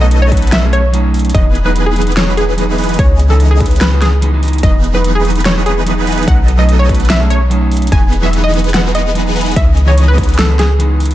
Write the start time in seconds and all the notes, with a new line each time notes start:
Already playing: B1 F#3 B3 D#4 A4 D#5
0.00 F#3 A3 C#4 D#4 D#5
0.11 closed hi-hat
0.22 C#5
0.31 F#3 A3 B3 C#4 D#4 A4 B4, kick, closed hi-hat
0.37 closed hi-hat
0.42 closed hi-hat
0.47 closed hi-hat
0.52 E5, snare, closed hi-hat
0.62 F#3 A3 C#4 G#4
0.73 C#5, closed hi-hat
0.93 F#3 A3 C#4 D#4, closed hi-hat
1.14 open hi-hat
1.19 closed hi-hat
1.25 closed hi-hat
1.29 closed hi-hat
1.34 E1 E3 F#3 G#3 B3 D#4 G#4 B4 D#5, kick, closed hi-hat
1.55 closed hi-hat
1.65 F#3 G#3 B3 D#4 B4
1.76 closed hi-hat
1.86 G#4
1.95 E3 F#3 G#3 B3 D#4 G#4 B4, closed hi-hat
2.02 closed hi-hat
2.07 closed hi-hat
2.12 closed hi-hat
2.17 C#5, snare, closed hi-hat
2.26 F#3 G#3 B3 F#4
2.37 G#4, closed hi-hat
2.57 F#3 G#3 B3 D#4, closed hi-hat
2.78 E3 B3 D#4 G#4 B4, open hi-hat
2.84 closed hi-hat
2.89 closed hi-hat
2.94 E3, closed hi-hat
2.99 C#2 E3 G#3 B3 C#4 D#4 G#4 C#5 D#5, kick, closed hi-hat
3.19 closed hi-hat
3.29 E3 G#3 B3 D#4 A4
3.40 closed hi-hat
3.51 G#4
3.60 E3 G#3 B3 C#4 D#4 G#4 B4, kick, closed hi-hat
3.66 closed hi-hat
3.71 closed hi-hat
3.76 closed hi-hat
3.81 B4, snare, closed hi-hat
3.91 E3 G#3 B3 F#4
4.02 G#4, snare, closed hi-hat
4.21 E3 G#3 B3 D#4, closed hi-hat
4.32 E3 G#3 B3 D#4
4.42 E3 G#3 B3 D#4, open hi-hat
4.48 closed hi-hat
4.53 closed hi-hat
4.58 closed hi-hat
4.62 E1 E3 F#3 G#3 B3 D#4 G#4 B4 D#5, kick, closed hi-hat
4.84 closed hi-hat
4.94 F#3 G#3 B3 D#4 B4
5.04 closed hi-hat
5.15 G#4
5.24 E3 F#3 G#3 B3 D#4 G#4 B4, closed hi-hat
5.30 closed hi-hat
5.35 closed hi-hat
5.40 closed hi-hat
5.45 C#5, snare, closed hi-hat
5.55 F#3 G#3 B3 F#4
5.66 G#4, closed hi-hat
5.86 F#3 G#3 B3 D#4, closed hi-hat
6.07 E3 B3 D#4 G#4 B4, open hi-hat
6.12 closed hi-hat
6.18 closed hi-hat
6.23 F#3, closed hi-hat
6.27 B1 F#3 A3 B3 C#4 D#4 A4 D#5 F#5, kick, closed hi-hat
6.48 closed hi-hat
6.58 F#3 A3 C#4 D#4 D#5
6.69 closed hi-hat
6.79 C#5
6.88 F#3 A3 B3 C#4 D#4 A4 B4, kick, closed hi-hat
6.95 closed hi-hat
7.00 closed hi-hat
7.05 closed hi-hat
7.10 E5, snare, closed hi-hat
7.19 F#3 A3 C#4 G#4
7.30 C#5, closed hi-hat
7.50 F#3 A3 C#4 D#4, closed hi-hat
7.71 open hi-hat
7.77 closed hi-hat
7.82 closed hi-hat
7.87 F#3, closed hi-hat
7.92 E1 E3 G#3 B3 D#4 G#4 B4 G#5, kick, closed hi-hat
8.13 closed hi-hat
8.22 F#3 G#3 B3 D#4 E5
8.33 closed hi-hat
8.44 D#5
8.53 E3 F#3 G#3 B3 D#4 G#4 B4, closed hi-hat
8.59 closed hi-hat
8.64 closed hi-hat
8.69 closed hi-hat
8.74 F#5, snare, closed hi-hat
8.84 F#3 G#3 B3 F#4
8.95 D#5, closed hi-hat
9.14 F#3 G#3 B3 D#4, closed hi-hat
9.36 E3 B3 D#4 G#4 B4, open hi-hat
9.41 closed hi-hat
9.46 closed hi-hat
9.51 E3, closed hi-hat
9.56 C#2 E3 G#3 B3 C#4 D#4 G#4 D#5 E5, kick, closed hi-hat
9.77 closed hi-hat
9.86 E3 G#3 B3 D#4 C#5
9.98 closed hi-hat
10.08 B4
10.17 E3 G#3 B3 C#4 D#4 G#4 B4, kick, closed hi-hat
10.23 closed hi-hat
10.29 closed hi-hat
10.34 closed hi-hat
10.39 A4, snare, closed hi-hat
10.48 E3 G#3 B3 F#4
10.59 G#4, snare, closed hi-hat
10.79 E3 G#3 B3 D#4, closed hi-hat
11.00 open hi-hat
11.05 closed hi-hat
11.11 closed hi-hat